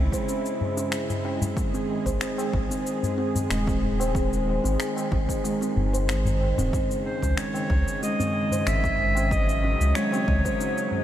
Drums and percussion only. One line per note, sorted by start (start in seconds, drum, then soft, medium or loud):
0.12 kick medium
0.12 tabla tin soft
0.12 cabasa medium
0.29 cabasa medium
0.46 cabasa soft
0.61 tabla ge medium
0.78 cabasa medium
0.92 finger snap medium
0.92 cabasa medium
1.10 tabla ge loud
1.10 cabasa soft
1.25 tabla na medium
1.42 tabla ge loud
1.42 cabasa medium
1.57 kick loud
1.57 cabasa medium
1.74 cabasa soft
1.90 tabla na soft
1.90 tabla tin soft
2.06 kick medium
2.06 cabasa medium
2.21 finger snap loud
2.21 cabasa medium
2.38 tabla na medium
2.38 cabasa soft
2.53 kick loud
2.71 cabasa medium
2.87 cabasa medium
3.03 tabla ge medium
3.03 cabasa soft
3.18 tabla tin soft
3.36 tabla ge medium
3.36 cabasa medium
3.51 finger snap medium
3.51 cabasa medium
3.67 kick loud
3.67 cabasa soft
3.83 tabla ge medium
4.00 tabla na medium
4.00 cabasa medium
4.15 kick loud
4.15 cabasa medium
4.33 cabasa soft
4.48 tabla na soft
4.48 tabla tin soft
4.66 cabasa medium
4.80 finger snap medium
4.80 cabasa medium
4.97 tabla na medium
4.97 cabasa soft
5.12 kick loud
5.29 kick medium
5.29 tabla tin soft
5.29 cabasa medium
5.45 cabasa medium
5.62 cabasa soft
5.76 tabla ge medium
5.94 cabasa medium
6.09 finger snap medium
6.09 cabasa soft
6.25 tabla ge loud
6.25 cabasa soft
6.40 tabla na medium
6.58 tabla ge loud
6.58 cabasa medium
6.73 kick loud
6.73 cabasa medium
6.91 cabasa soft
7.05 tabla na soft
7.05 tabla tin soft
7.23 kick medium
7.23 cabasa medium
7.37 finger snap medium
7.37 cabasa medium
7.54 tabla na medium
7.54 cabasa soft
7.70 kick medium
7.88 cabasa medium
8.03 cabasa medium
8.20 tabla ge medium
8.20 cabasa soft
8.34 tabla tin soft
8.51 tabla ge medium
8.51 cabasa medium
8.67 finger snap medium
8.67 cabasa medium
8.84 kick medium
8.84 cabasa soft
8.98 tabla ge medium
9.15 tabla na medium
9.15 cabasa medium
9.31 kick loud
9.31 cabasa medium
9.49 cabasa soft
9.63 tabla na soft
9.63 tabla tin soft
9.81 cabasa medium
9.95 finger snap medium
9.95 cabasa soft
10.12 tabla na medium
10.12 cabasa soft
10.28 kick loud
10.45 kick medium
10.45 tabla tin soft
10.45 cabasa medium
10.61 cabasa medium
10.78 cabasa soft
10.92 tabla ge medium